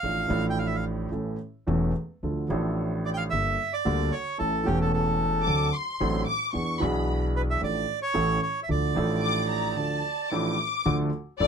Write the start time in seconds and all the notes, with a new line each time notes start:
Already playing: F5
0.03 A1 A2 F3 A3 D4 A4
0.28 A1 A2 F3 A3 D4 A4
0.50 G5
0.59 F5
0.67 E5
0.75 F5
1.11 A1 A2 E3 A3 C#4 A4
1.67 E1 E2 E3 A3 C#4 A4
2.23 D2 D3 F3 A3 D4 A4
2.48 A1 A2 F3 A3 D4
2.53 A4
3.05 D5
3.14 F5 G5
3.30 G1 G2 G3 A#3 D4 A4 E5
3.73 D5
3.85 D2 D3 G3 A#3 D4 A4
4.12 C#5
4.38 A1 A2 E3 A3 C#4 A4
4.64 E1 E2 E3 A3 C#4 G4
4.68 E1 A4
4.81 A4
4.94 A4
5.45 D2 D3 F#3 C4 D4 A4 D6
5.74 C6
6.00 A1 A2 F#3 C4 D4 A4
6.28 D6
6.53 E2 E3 B3 D4 G#4 C#6
6.79 B1 B2 E3 B3 D4 B5
6.84 G#4
7.36 B4
7.50 E5
7.60 A1 A2 F3 A3 D4 A4 D5
8.02 C#5
8.14 A1 A2 E3 A3 C#4 A4
8.42 C#5
8.63 E5
8.69 D2 D3 F3 A3 D4 A4 D5
8.94 A1 A2 F3 A3 D4 A4
9.22 D6
9.49 A#5
9.77 D2 D3 F3 A3 D4 A4 A5
10.31 A1 A2 F3 A3 D4 A4 D6
10.85 D2 D3 F3 A3 D4 A4
11.40 A1 A2 F3 A3 D4 A4 D5